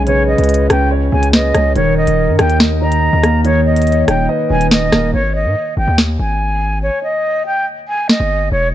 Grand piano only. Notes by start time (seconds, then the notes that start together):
Already playing: C#3 G#3 C#4 C#5
0.07 C#3
0.70 C#4
0.91 C#5
1.12 C#3
1.55 G#3
1.76 D#3
2.39 D#4
2.60 D#5
2.82 D#3
3.23 A#3
3.45 D#3
4.08 D#4
4.29 D#5
4.50 D#3
4.92 A#3